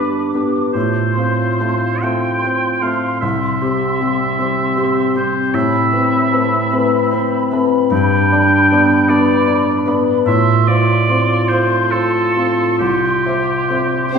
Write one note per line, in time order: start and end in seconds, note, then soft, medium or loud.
0.00 0.77 G2 soft
0.00 0.78 G2 soft
0.00 0.34 B3 soft
0.00 0.34 D4 soft
0.00 0.70 D4 soft
0.00 0.78 D4 soft
0.00 0.35 G4 soft
0.00 0.78 G4 soft
0.00 0.78 A4 soft
0.00 0.28 B4 medium
0.00 0.32 B4 soft
0.00 0.78 D5 soft
0.00 0.78 B5 soft
0.00 0.71 D6 soft
0.33 0.71 B3 soft
0.33 0.71 D4 soft
0.33 0.71 G4 soft
0.33 0.78 B4 soft
0.73 3.26 A2 soft
0.73 1.16 A2 soft
0.73 2.92 F4 soft
0.73 2.04 C5 medium
0.73 5.31 C6 soft
1.17 1.56 C4 soft
1.17 3.60 C4 soft
1.17 1.56 F4 soft
1.60 1.99 A3 soft
1.60 1.99 C4 soft
1.60 3.26 F4 soft
1.60 1.99 F4 soft
2.02 2.40 A3 soft
2.02 2.40 C4 soft
2.02 2.40 F4 soft
2.02 2.81 A4 soft
2.02 2.83 G5 medium
2.43 2.79 C4 soft
2.43 2.80 F4 soft
2.43 4.76 C5 soft
2.82 3.18 A3 soft
2.82 3.18 C4 soft
2.82 3.18 F4 soft
2.82 3.25 A4 soft
2.82 3.20 F5 medium
3.21 3.61 C2 soft
3.21 5.57 C3 soft
3.21 7.88 C4 medium
3.21 5.11 E5 medium
3.61 5.92 C4 soft
3.61 3.97 C4 soft
3.61 3.97 G4 soft
4.00 4.35 G3 soft
4.00 4.35 C4 soft
4.00 6.30 E4 soft
4.00 4.35 G4 soft
4.38 4.73 G3 soft
4.38 4.74 C4 soft
4.38 5.14 G4 soft
4.38 4.74 G4 soft
4.77 5.12 C4 soft
4.77 5.12 G4 soft
4.77 7.10 C5 soft
5.15 5.50 G3 soft
5.15 5.50 C4 soft
5.15 5.50 G4 soft
5.15 5.57 G4 soft
5.15 5.56 C5 medium
5.54 5.92 A2 medium
5.54 7.95 A2 medium
5.54 7.64 E5 medium
5.54 10.22 B5 medium
5.93 6.28 C4 soft
5.93 6.29 B4 soft
6.32 6.68 A3 soft
6.32 6.68 C4 soft
6.32 7.94 E4 soft
6.32 6.68 B4 soft
6.71 7.08 A3 soft
6.71 7.08 C4 soft
6.71 7.50 B4 soft
6.71 7.09 B4 soft
7.11 7.48 C4 soft
7.11 7.48 B4 soft
7.11 7.94 C5 medium
7.51 7.88 A3 soft
7.51 7.88 C4 soft
7.51 9.07 B4 medium
7.51 7.88 B4 soft
7.90 10.29 G2 medium
7.90 8.30 G2 medium
7.90 9.95 D4 medium
7.90 9.10 G5 loud
8.30 10.29 D4 soft
8.30 8.66 D4 soft
8.30 8.66 D5 soft
8.69 9.05 B3 soft
8.69 9.06 D4 soft
8.69 10.29 G4 soft
8.69 9.06 D5 soft
9.08 9.43 B3 soft
9.08 9.44 D4 soft
9.08 9.84 B4 medium
9.08 9.87 D5 medium
9.08 9.44 D5 soft
9.47 9.83 D4 soft
9.47 10.30 D5 soft
9.47 9.83 D5 soft
9.86 10.23 B3 soft
9.86 10.23 D4 soft
9.86 10.29 B4 medium
9.86 10.23 D5 soft
10.25 12.83 A2 medium
10.25 10.66 A2 medium
10.25 14.11 F4 medium
10.25 10.69 E5 medium
10.25 14.19 C6 medium
10.67 13.24 C4 soft
10.67 11.04 F4 soft
10.67 11.05 C5 soft
10.67 11.50 D5 medium
11.09 11.46 C4 soft
11.09 11.91 F4 soft
11.09 11.46 F4 soft
11.09 11.46 C5 soft
11.49 11.89 C4 soft
11.49 11.89 F4 soft
11.49 14.19 A4 soft
11.49 11.92 C5 medium
11.49 11.89 C5 soft
11.91 12.83 F4 soft
11.91 12.32 F4 soft
11.91 12.78 A4 medium
11.91 12.32 C5 soft
12.36 12.76 C4 soft
12.36 12.77 F4 soft
12.36 12.77 C5 soft
12.79 13.24 C2 soft
12.79 14.19 C3 soft
12.79 14.11 G4 medium
13.25 14.19 C4 soft
13.25 13.67 C5 soft
13.25 13.66 E5 soft
13.69 14.10 C4 soft
13.69 14.19 G4 soft
13.69 14.11 C5 soft
13.69 14.11 E5 soft
14.13 14.19 C4 medium
14.13 14.19 C4 soft
14.13 14.19 E4 soft
14.13 14.19 G4 medium
14.13 14.19 C5 soft
14.13 14.19 C5 medium